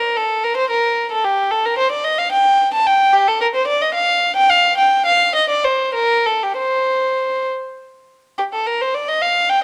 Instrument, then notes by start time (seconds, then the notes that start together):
violin
Already playing: A#4
0.17 A4
0.44 A#4
0.57 C5
0.70 A#4
1.12 A4
1.25 G4
1.51 A4
1.65 A#4
1.78 C5
1.92 D5
2.04 D#5
2.19 F5
2.32 G5
2.74 A5
2.87 G5
3.13 G4
3.28 A4
3.41 A#4
3.55 C5
3.67 D5
3.82 D#5
3.94 F5
4.36 G5
4.50 F5
4.78 G5
5.06 F5
5.36 D#5
5.50 D5
5.64 C5
5.94 A#4
6.26 A4
6.43 G4
6.58 C5
8.38 G4
8.54 A4
8.67 A#4
8.81 C5
8.95 D5
9.09 D#5
9.22 F5
9.50 G5